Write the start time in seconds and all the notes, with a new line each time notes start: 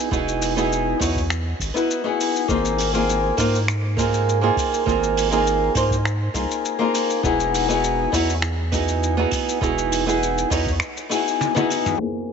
0.11 E1 B3 D#4 E4 F#4 G#4, kick, shaker
0.28 shaker
0.42 open hi-hat, shaker
0.56 B3 D#4 E4 F#4 G#4, shaker
0.73 shaker
1.00 E2 B3 D#4 E4 F#4 C#5, kick, open hi-hat, shaker
1.16 kick, shaker
1.30 finger snap, shaker
1.59 G#1, kick, open hi-hat, shaker
1.74 B3 D#4 E4 F#4 B4, shaker
1.91 shaker
2.04 B3 D#4 E4 F#4 G#4
2.21 open hi-hat, shaker
2.36 shaker
2.48 G#1 A#3 C4 D#4 F4 G#4, kick, shaker
2.65 shaker
2.78 open hi-hat, shaker
2.93 A#3 C4 D#4 F4 G#4, shaker
3.10 shaker
3.37 G#2 A#3 C4 D#4 F4 C5, kick, open hi-hat, shaker
3.55 shaker
3.68 finger snap, shaker
3.97 A#3 C4 D#4 F4 G#4, kick, open hi-hat, shaker
4.14 shaker
4.29 shaker
4.41 A#3 C4 D#4 F4 G#4
4.57 kick, open hi-hat, shaker
4.74 shaker
4.86 G#1 A#3 C4 D#4 F4 G#4, kick, shaker
5.03 shaker
5.17 open hi-hat, shaker
5.31 A#3 C4 D#4 F4 G#4, shaker
5.47 shaker
5.75 G#2 A#3 C4 D#4 F4 C5, kick, open hi-hat, shaker
5.91 kick, shaker
6.05 finger snap, shaker
6.34 C2 A#3 C4 D#4 F4 G#4, kick, open hi-hat, shaker
6.51 shaker
6.65 shaker
6.79 A#3 C4 D#4 F4 G#4
6.95 open hi-hat, shaker
7.10 shaker
7.23 E1 B3 D#4 E4 F#4 G#4, kick, shaker
7.40 shaker
7.54 open hi-hat, shaker
7.68 B3 D#4 E4 F#4 G#4, shaker
7.84 shaker
8.12 E2 B3 D#4 E4 F#4 C#5, kick, open hi-hat, shaker
8.30 shaker
8.42 finger snap, shaker
8.72 B3 D#4 E4 F#4 G#4, kick, open hi-hat, shaker
8.88 shaker
9.03 shaker
9.17 B3 D#4 E4 F#4 G#4
9.31 kick, open hi-hat, shaker
9.49 shaker
9.61 E1 B3 D#4 E4 F#4 G#4, kick, shaker
9.78 shaker
9.92 open hi-hat, shaker
10.06 B3 D#4 E4 F#4 G#4, shaker
10.23 shaker
10.38 shaker
10.50 E2 B3 D#4 E4 F#4 C#5, kick, open hi-hat, shaker
10.66 kick, shaker
10.80 finger snap, shaker
10.97 shaker
11.09 B3 D#4 E4 F#4 G#4, open hi-hat, shaker
11.28 shaker
11.41 high tom, shaker
11.55 B3 D#4 E4 F#4 G#4, high tom, shaker
11.70 open hi-hat, shaker
11.86 mid tom, shaker
11.98 A#3 C4 D#4 F4, shaker
12.02 G#4